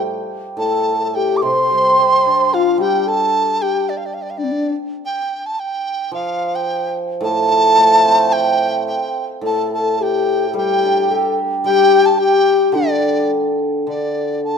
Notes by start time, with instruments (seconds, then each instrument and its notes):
Already playing: hammered dulcimer A2 G3 A3
0.57 hammered dulcimer A2, xiao A4, dizi A5
1.02 xiao A4
1.15 xiao G4, dizi G5
1.37 dizi D6
1.42 hammered dulcimer C3, xiao C5, dizi C6
1.70 hammered dulcimer G3
1.99 hammered dulcimer C4
2.26 hammered dulcimer D4
2.54 xiao F4, dizi F5
2.78 hammered dulcimer G3, xiao G4, dizi G5
3.07 xiao A4, dizi A5
3.62 xiao G4, dizi G5
3.89 dizi D5
3.97 dizi F5
4.06 dizi D5
4.14 dizi F5
4.22 dizi D5
4.30 dizi F5
4.38 xiao D4, dizi D5
4.44 xiao C4
4.52 xiao D4
5.05 dizi G5
5.46 dizi A5
5.59 dizi G5
6.11 hammered dulcimer F3, dizi F5
6.55 dizi G5
7.21 hammered dulcimer A2, dizi A5
7.50 hammered dulcimer F3
7.77 hammered dulcimer A3
8.05 hammered dulcimer C4
8.32 dizi G5
8.87 dizi G5
9.41 hammered dulcimer A2, xiao A4
9.46 dizi A5
9.72 xiao A4, dizi A5
10.00 xiao G4, dizi G5
10.50 hammered dulcimer G3, xiao A4
10.55 xiao G4, dizi G5
10.83 hammered dulcimer D4
11.11 hammered dulcimer G4, xiao A4
11.64 hammered dulcimer G3, xiao G4, dizi G5
12.06 dizi A5
12.19 xiao G4, dizi G5
12.72 hammered dulcimer D3, xiao D4, dizi D5
13.87 hammered dulcimer D3, dizi D5
14.44 dizi A5